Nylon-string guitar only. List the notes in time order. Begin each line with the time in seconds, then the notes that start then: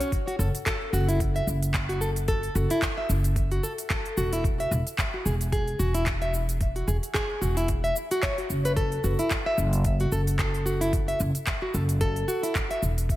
0.01 C#4
0.27 F#4
0.39 A4
0.66 A4
0.93 F#4
1.08 E4
1.36 E5
1.89 F#4
2.01 A4
2.28 A4
2.55 F#4
2.71 E4
2.98 E5
3.52 F#4
3.63 A4
3.90 A4
4.17 F#4
4.33 E4
4.60 E5
5.14 F#4
5.26 G#4
5.52 G#4
5.79 F#4
5.95 E4
6.22 E5
6.76 F#4
6.88 G#4
7.14 G#4
7.41 F#4
7.57 E4
7.84 E5
8.11 F#4
8.23 C#5
8.38 F#4
8.65 B4
8.76 A4
9.04 F#4
9.19 E4
9.46 E5
10.01 F#4
10.12 A4
10.39 A4
10.66 F#4
10.81 E4
11.08 E5
11.62 F#4
11.74 A4
12.01 A4
12.28 F#4
12.43 E4
12.71 E5